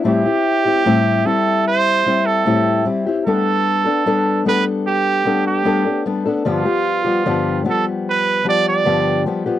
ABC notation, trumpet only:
X:1
M:4/4
L:1/16
Q:1/4=75
K:G
V:1 name="Trumpet"
G6 A2 c3 A3 z2 | A6 B2 G3 G3 z2 | =F6 A2 B2 d d3 z2 |]